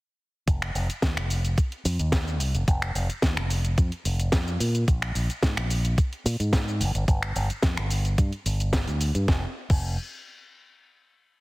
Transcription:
0.48 0.71 F1 loud
0.48 kick loud
0.48 closed hi-hat medium
0.48 shaker soft
0.62 finger snap medium
0.62 closed hi-hat soft
0.75 0.87 F1 loud
0.75 open hi-hat loud
0.75 shaker medium
0.89 muted fingered electric bass stroke soft
0.89 closed hi-hat medium
0.89 shaker soft
1.02 1.14 D#2 medium
1.02 kick loud
1.02 snare loud
1.02 closed hi-hat medium
1.02 shaker soft
1.17 1.54 F1 medium
1.17 finger snap medium
1.30 open hi-hat medium
1.30 shaker medium
1.45 closed hi-hat medium
1.45 shaker soft
1.58 kick loud
1.58 closed hi-hat medium
1.58 shaker soft
1.72 closed hi-hat soft
1.85 1.97 F2 loud
1.85 open hi-hat loud
1.85 shaker medium
1.99 2.40 D#2 medium
1.99 closed hi-hat medium
1.99 shaker soft
2.12 kick loud
2.12 snare loud
2.12 closed hi-hat medium
2.12 shaker soft
2.27 shaker soft
2.40 2.52 C2 medium
2.40 open hi-hat medium
2.40 shaker medium
2.55 2.66 F1 medium
2.55 closed hi-hat medium
2.55 shaker soft
2.68 2.91 F1 loud
2.68 kick loud
2.68 closed hi-hat medium
2.68 shaker soft
2.82 finger snap medium
2.82 closed hi-hat soft
2.95 3.07 F1 medium
2.95 open hi-hat loud
2.95 shaker medium
3.09 muted fingered electric bass stroke soft
3.09 closed hi-hat medium
3.09 shaker soft
3.22 3.35 D#2 medium
3.22 kick loud
3.22 snare loud
3.22 closed hi-hat medium
3.22 shaker soft
3.37 3.74 F1 medium
3.37 finger snap medium
3.50 open hi-hat loud
3.50 shaker medium
3.65 closed hi-hat medium
3.65 shaker soft
3.78 3.90 F2 loud
3.78 kick loud
3.78 closed hi-hat medium
3.78 shaker soft
3.92 closed hi-hat soft
4.05 4.28 F1 loud
4.05 open hi-hat loud
4.05 shaker medium
4.20 closed hi-hat medium
4.20 shaker soft
4.32 4.56 F2 medium
4.32 kick loud
4.32 snare loud
4.32 closed hi-hat medium
4.32 shaker soft
4.47 shaker soft
4.60 4.83 A#2 medium
4.60 open hi-hat loud
4.60 shaker medium
4.75 closed hi-hat medium
4.75 shaker soft
4.88 5.11 A#1 loud
4.88 kick loud
4.88 closed hi-hat medium
4.88 shaker soft
5.02 finger snap medium
5.02 closed hi-hat soft
5.15 5.27 A#1 loud
5.15 open hi-hat loud
5.15 shaker medium
5.29 muted fingered electric bass stroke soft
5.29 closed hi-hat medium
5.29 shaker soft
5.43 5.55 G#2 medium
5.43 kick loud
5.43 snare loud
5.43 closed hi-hat medium
5.43 shaker soft
5.57 5.94 A#1 medium
5.57 finger snap medium
5.70 open hi-hat loud
5.70 shaker medium
5.85 closed hi-hat soft
5.85 shaker soft
5.98 kick loud
5.98 closed hi-hat medium
5.98 shaker soft
6.13 closed hi-hat soft
6.25 6.37 A#2 loud
6.25 open hi-hat loud
6.25 shaker medium
6.40 6.82 G#2 loud
6.40 closed hi-hat medium
6.40 shaker soft
6.53 kick loud
6.53 snare loud
6.53 closed hi-hat medium
6.53 shaker soft
6.68 shaker soft
6.80 6.92 G1 medium
6.80 open hi-hat loud
6.80 shaker medium
6.95 7.06 G1 medium
6.95 closed hi-hat soft
6.95 shaker soft
7.08 7.31 G1 loud
7.08 kick loud
7.08 closed hi-hat medium
7.08 shaker soft
7.22 finger snap medium
7.22 closed hi-hat soft
7.36 7.48 G1 loud
7.36 open hi-hat loud
7.36 shaker medium
7.50 muted fingered electric bass stroke soft
7.50 closed hi-hat soft
7.50 shaker soft
7.62 7.75 F2 medium
7.62 kick loud
7.62 snare loud
7.62 closed hi-hat medium
7.62 shaker soft
7.77 8.15 G1 loud
7.77 finger snap medium
7.91 open hi-hat loud
7.91 shaker medium
8.05 closed hi-hat medium
8.05 shaker soft
8.18 8.30 G2 loud
8.18 kick loud
8.18 closed hi-hat medium
8.18 shaker soft
8.33 closed hi-hat soft
8.46 8.84 G1 medium
8.46 open hi-hat loud
8.46 shaker medium
8.60 closed hi-hat medium
8.60 shaker soft
8.73 kick loud
8.73 snare loud
8.73 closed hi-hat medium
8.73 shaker soft
8.87 9.10 D2 medium
8.87 closed hi-hat soft
8.87 shaker soft
9.01 open hi-hat loud
9.01 shaker medium
9.15 9.26 G2 medium
9.15 closed hi-hat soft
9.15 shaker soft
9.28 9.44 F1 loud
9.28 kick loud
9.28 snare medium
9.70 9.96 F1 loud
9.70 kick loud
9.70 crash medium

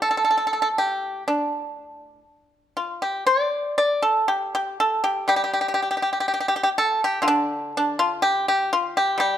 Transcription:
0.00 2.24 A2 medium
0.00 0.09 A4 medium
0.11 0.16 A4 medium
0.17 0.23 A4 medium
0.25 0.29 A4 medium
0.31 0.36 A4 medium
0.38 0.44 A4 medium
0.47 0.52 A4 medium
0.53 0.59 A4 medium
0.62 0.67 A4 medium
0.78 1.22 G4 medium
1.28 2.75 D4 medium
2.77 3.01 F4 medium
3.02 3.26 G4 medium
3.27 3.75 D5 medium
3.78 4.02 D5 medium
4.02 4.27 A4 medium
4.28 4.53 G4 medium
4.55 4.78 G4 medium
4.80 5.03 A4 medium
5.04 5.28 G4 medium
5.28 8.21 G3 medium
5.28 5.35 G4 medium
5.36 5.43 G4 medium
5.44 5.51 G4 medium
5.53 5.60 G4 medium
5.61 5.67 G4 medium
5.68 5.73 G4 medium
5.74 5.81 G4 medium
5.82 5.88 G4 soft
5.91 5.96 G4 medium
5.97 6.01 G4 medium
6.02 6.09 G4 medium
6.13 6.18 G4 soft
6.20 6.25 G4 medium
6.28 6.33 G4 medium
6.34 6.39 G4 medium
6.40 6.46 G4 medium
6.48 6.54 G4 medium
6.56 6.61 G4 medium
6.63 6.68 G4 medium
6.78 7.00 A4 medium
7.04 7.19 G4 medium
7.22 9.38 D3 medium
7.22 7.27 F4 medium
7.28 7.72 D4 medium
7.77 7.98 D4 medium
7.99 8.21 F4 medium
8.22 8.45 G4 medium
8.48 8.71 G4 medium
8.73 8.95 F4 medium
8.97 9.19 G4 medium
9.18 9.38 G3 medium
9.18 9.38 G4 medium

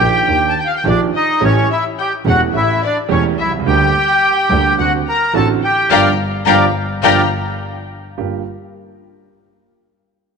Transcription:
0.00 0.23 A#1 medium
0.00 0.24 A#1 medium
0.00 0.23 A#2 medium
0.00 0.23 D#3 medium
0.00 0.23 A#3 medium
0.00 0.24 D4 medium
0.00 0.24 G4 medium
0.00 0.46 G4 medium
0.00 0.45 G5 medium
0.00 0.54 G5 loud
0.27 0.52 D#2 medium
0.27 0.52 D#3 medium
0.27 0.52 A#3 soft
0.27 0.52 D4 soft
0.27 0.52 G4 medium
0.49 0.57 A5 medium
0.49 0.58 A5 medium
0.58 0.66 G5 medium
0.58 0.68 G5 medium
0.67 0.75 F5 medium
0.67 0.76 F5 medium
0.76 0.84 G5 medium
0.76 0.86 G5 medium
0.84 1.08 A#1 loud
0.84 1.09 A#1 medium
0.84 1.09 A#2 medium
0.84 1.09 D#3 medium
0.84 1.09 A#3 medium
0.84 1.09 D4 medium
0.84 1.09 G4 medium
0.84 0.99 D5 medium
0.89 1.01 D4 medium
0.89 1.01 D5 medium
1.15 1.41 D#4 medium
1.15 1.40 D#5 medium
1.15 1.44 D#5 medium
1.41 1.65 A1 medium
1.41 1.65 A1 loud
1.41 1.65 A2 medium
1.41 1.64 E3 medium
1.41 1.65 A3 medium
1.41 1.65 C#4 medium
1.41 1.69 C#4 medium
1.41 1.65 G4 medium
1.41 1.68 C#5 medium
1.41 1.69 C#5 medium
1.71 1.84 E4 medium
1.71 1.83 E5 medium
1.71 1.85 E5 medium
1.99 2.12 G4 medium
1.99 2.11 G5 medium
1.99 2.13 G5 medium
2.25 2.49 E1 medium
2.25 2.49 E1 loud
2.25 2.49 E2 medium
2.25 2.49 E3 medium
2.25 2.49 A3 medium
2.25 2.49 C#4 medium
2.25 2.41 F#4 medium
2.25 2.49 G4 medium
2.25 2.40 F#5 medium
2.29 2.41 F#5 medium
2.53 2.77 A1 medium
2.53 2.77 A2 medium
2.53 2.77 E3 medium
2.53 2.77 A3 soft
2.53 2.77 C#4 soft
2.53 2.81 E4 medium
2.53 2.77 G4 medium
2.53 2.80 E5 medium
2.53 2.81 E5 medium
2.83 2.98 D4 medium
2.83 2.95 D5 medium
2.83 2.98 D5 medium
3.08 3.33 E1 medium
3.08 3.33 E2 medium
3.08 3.33 E3 medium
3.08 3.33 A3 medium
3.08 3.33 C#4 medium
3.08 3.24 C#4 medium
3.08 3.33 G4 medium
3.08 3.24 C#5 medium
3.38 3.65 C2 medium
3.38 3.52 E4 medium
3.38 3.51 E5 medium
3.38 3.52 E5 medium
3.44 3.52 B1 medium
3.51 3.58 C2 medium
3.59 3.66 C#2 medium
3.66 3.89 D2 loud
3.66 3.90 D2 medium
3.66 3.90 D3 medium
3.66 3.90 G3 medium
3.66 3.90 A#3 medium
3.66 3.90 G4 medium
3.66 4.75 G4 medium
3.66 4.75 G5 medium
3.66 4.75 G5 loud
4.50 4.73 D2 loud
4.50 4.74 D2 medium
4.50 4.74 D3 medium
4.50 4.74 G3 medium
4.50 4.74 A#3 medium
4.50 4.74 G4 medium
4.78 5.01 D2 medium
4.78 5.02 D2 medium
4.78 5.02 D3 medium
4.78 5.02 A3 soft
4.78 5.02 C4 soft
4.78 5.02 F#4 medium
4.78 4.93 F#4 medium
4.78 4.91 F#5 medium
4.78 4.93 F#5 medium
5.07 5.34 A#4 medium
5.07 5.33 A#5 medium
5.34 5.58 A1 medium
5.34 5.58 A2 medium
5.34 5.57 D3 medium
5.34 5.58 A3 medium
5.34 5.58 C4 medium
5.34 5.58 F#4 medium
5.34 5.48 A4 medium
5.34 5.48 A5 medium
5.34 5.48 A5 loud
5.63 5.90 G4 medium
5.63 5.89 G5 medium
5.90 6.11 G1 medium
5.90 6.09 D3 medium
5.90 6.09 F3 medium
5.90 6.09 G3 medium
5.90 6.09 G4 medium
5.90 6.08 A#4 loud
5.90 6.09 D5 medium
5.90 6.08 F5 loud
5.90 6.08 G5 medium
5.90 6.08 A#5 medium
6.46 6.67 G1 loud
6.46 6.65 D3 medium
6.46 6.65 F3 loud
6.46 6.65 G3 loud
6.46 6.65 G4 loud
6.46 6.65 A#4 loud
6.46 6.65 D5 medium
6.46 6.64 F5 medium
6.46 6.64 G5 medium
6.46 6.64 A#5 medium
7.03 7.24 G1 loud
7.03 7.21 D3 medium
7.03 7.22 F3 medium
7.03 7.22 G3 medium
7.03 7.22 G4 medium
7.03 7.22 A#4 medium
7.03 7.22 D5 medium
7.03 7.21 F5 medium
7.03 7.21 G5 loud
7.03 7.22 A#5 medium
8.18 8.41 G1 medium
8.18 8.41 G2 medium
8.18 8.41 A#3 soft
8.18 8.41 F4 soft
8.18 8.41 G4 medium

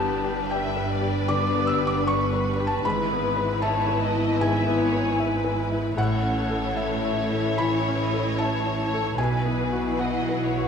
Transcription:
0.00 2.81 G1 medium
0.00 1.24 G2 medium
0.00 2.81 G2 medium
0.00 2.88 G2 medium
0.00 2.81 G3 medium
0.00 0.39 B3 soft
0.00 2.80 B3 medium
0.00 2.81 D4 medium
0.00 0.49 G4 medium
0.00 2.81 B4 medium
0.00 0.46 A5 loud
0.00 0.48 A5 medium
0.10 1.66 B3 soft
0.24 0.66 G4 soft
0.50 2.05 G4 soft
0.50 0.92 D5 soft
0.50 0.89 E5 medium
0.50 1.28 G5 medium
0.50 1.25 G5 medium
0.77 1.18 B4 soft
0.90 2.45 D4 medium
0.90 2.07 D5 medium
1.01 1.43 G4 soft
1.28 2.88 D3 medium
1.28 1.70 D3 soft
1.28 1.64 D6 medium
1.28 1.67 D6 medium
1.55 1.96 B3 soft
1.67 3.22 B3 soft
1.67 1.87 E6 medium
1.67 1.85 E6 medium
1.81 2.23 G4 soft
1.87 2.06 D6 medium
1.87 2.05 D6 medium
2.06 2.88 G4 medium
2.06 3.59 B4 medium
2.06 2.49 D5 medium
2.06 2.65 C#6 medium
2.06 2.62 C#6 medium
2.33 2.75 B4 soft
2.46 2.88 D4 soft
2.60 2.85 G4 medium
2.65 2.84 A5 medium
2.84 5.94 G#1 medium
2.84 4.39 G#2 medium
2.84 5.94 G#2 medium
2.84 4.37 G#2 medium
2.84 5.94 E3 medium
2.84 5.83 B3 medium
2.84 5.83 E4 medium
2.84 5.94 E4 medium
2.84 5.94 B4 medium
2.84 3.62 B5 medium
2.84 3.58 B5 medium
3.12 3.53 B3 soft
3.23 4.78 B3 soft
3.37 3.78 B4 soft
3.62 5.18 B4 soft
3.62 4.01 C#5 medium
3.62 4.04 E5 medium
3.62 4.36 A5 medium
3.62 4.39 A5 medium
3.88 4.30 B4 medium
4.01 5.57 E4 medium
4.01 4.40 D#5 medium
4.14 4.56 E4 soft
4.39 6.01 G#2 medium
4.39 5.94 G#2 soft
4.39 4.79 E5 medium
4.39 5.68 G#5 medium
4.39 5.94 G#5 medium
4.67 5.08 B3 soft
4.79 6.01 B3 soft
4.79 5.19 C#5 medium
4.93 5.35 B4 soft
5.19 6.01 B4 medium
5.19 5.98 B4 medium
5.19 5.62 E5 medium
5.44 5.87 B4 soft
5.58 7.16 E4 medium
5.72 5.98 E4 soft
5.97 9.14 A1 medium
5.97 9.21 A2 medium
5.97 7.55 A2 medium
5.97 9.14 A2 medium
5.97 9.15 E3 medium
5.97 9.15 C#4 medium
5.97 9.15 E4 medium
5.97 7.55 A4 medium
5.97 9.14 C#5 medium
5.97 6.72 F#5 medium
5.97 6.75 F#5 medium
6.23 6.65 C#4 soft
6.36 7.98 C#4 soft
6.50 6.93 A4 soft
6.76 8.38 A4 soft
6.76 7.55 E5 medium
6.76 7.59 E5 medium
7.05 7.48 C#5 medium
7.17 8.78 E4 medium
7.33 7.76 A4 soft
7.57 9.21 E3 medium
7.57 8.02 E3 soft
7.57 7.98 C#5 medium
7.57 8.34 B5 medium
7.57 8.39 B5 medium
7.88 8.29 C#4 soft
7.99 9.22 C#4 soft
7.99 8.39 D#5 medium
8.14 8.55 A4 soft
8.38 9.21 A4 medium
8.38 8.77 C#5 medium
8.38 8.82 E5 soft
8.38 9.14 A5 medium
8.38 9.19 A5 medium
8.67 9.08 C#5 soft
8.78 10.42 E4 soft
8.78 9.17 C#5 medium
8.94 9.19 A4 soft
9.18 10.68 B1 medium
9.18 10.68 B2 medium
9.18 10.68 E3 medium
9.18 10.68 B3 medium
9.18 10.68 E4 medium
9.18 9.97 B4 medium
9.18 10.68 B4 medium
9.18 9.95 G#5 medium
9.18 9.98 G#5 medium
9.45 9.88 B3 soft
9.59 10.68 B3 soft
9.73 10.16 F#4 soft
9.99 10.45 E4 soft
9.99 10.68 F#4 soft
9.99 10.42 D#5 medium
9.99 10.68 F#5 medium
10.29 10.68 B4 soft
10.42 10.68 E4 soft
10.42 10.68 C#5 medium
10.58 10.68 F#4 soft

